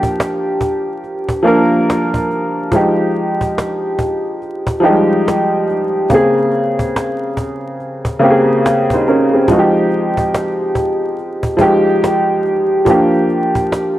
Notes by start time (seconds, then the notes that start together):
Already playing: F3 A#3 D4 G4
0.03 cajon bass
0.20 cajon slap
0.61 cajon bass
1.04 cajon slap
1.29 cajon bass
1.43 F3 A#3 D4, cajon slap
1.47 A#4
1.72 cajon slap
1.90 cajon slap
2.14 cajon bass
2.31 cajon slap
2.72 F3 G#3 D#4, cajon bass
2.76 G4
3.14 cajon slap
3.41 cajon bass
3.58 cajon slap
3.99 cajon bass
4.26 cajon slap
4.42 cajon slap
4.67 cajon bass
4.80 F3 G3 D#4, cajon slap
4.85 G#3 G4
5.28 cajon slap
5.69 cajon slap
5.94 cajon slap
6.10 C#3 A#3 C4, cajon bass
6.14 G#4
6.38 cajon slap
6.53 cajon slap
6.79 cajon bass
6.96 cajon slap
7.37 cajon bass
7.80 cajon slap
8.05 cajon bass
8.19 C#3 A#3 C4, cajon slap
8.24 G4
8.30 G#4
8.48 cajon slap
8.66 cajon slap
8.90 D#4 C5, cajon bass
9.07 C#4 A#4, cajon slap
9.33 C4 G#4
9.48 F3 G#3 D#4, cajon bass
9.52 F#4
9.59 G4
9.76 cajon slap
9.91 cajon slap
10.17 cajon bass
10.35 cajon slap
10.75 cajon bass
11.18 cajon slap
11.43 cajon bass
11.57 F3 G#3 D#4, cajon bass
11.61 G4
11.87 cajon slap
12.04 cajon slap
12.45 cajon slap
12.85 F3 A#3 D4, cajon bass
12.90 G4
13.14 cajon slap
13.29 cajon slap
13.55 cajon bass
13.72 cajon slap